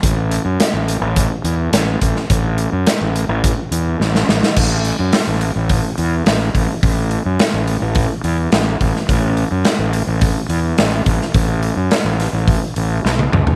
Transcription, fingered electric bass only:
X:1
M:4/4
L:1/16
Q:1/4=106
K:A
V:1 name="Fingered electric bass" clef=bass
A,,,3 F,, z A,,,2 A,,,2 z E,,2 A,,,2 A,,, z | A,,,3 F,, z A,,,2 A,,,2 z E,,2 A,,,2 A,,, z | A,,,3 F,, z A,,,2 A,,,2 z E,,2 A,,,2 A,,, z | A,,,3 F,, z A,,,2 A,,,2 z E,,2 A,,,2 A,,, z |
A,,,3 F,, z A,,,2 A,,,2 z E,,2 A,,,2 A,,, z | A,,,3 F,, z A,,,2 A,,,2 z A,,,2 B,,,2 C,,2 |]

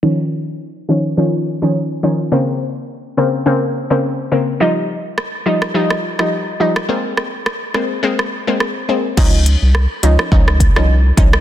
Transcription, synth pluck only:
X:1
M:4/4
L:1/16
Q:"Swing 16ths" 1/4=105
K:Dblyd
V:1 name="Synth pluck"
[E,F,D]6 [E,F,D]2 [E,F,D]3 [E,F,D] z2 [E,F,D] z | [D,B,C]6 [D,B,C]2 [D,B,C]3 [D,B,C] z2 [D,B,C] z | [F,G,E]6 [F,G,E]2 [F,G,E]3 [F,G,E] z2 [F,G,E] z | [A,B,C]6 [A,B,C]2 [A,B,C]3 [A,B,C] z2 [A,B,C] z |
[F,DE]6 [F,DE]2 [F,DE]3 [F,DE] z2 [F,DE] z |]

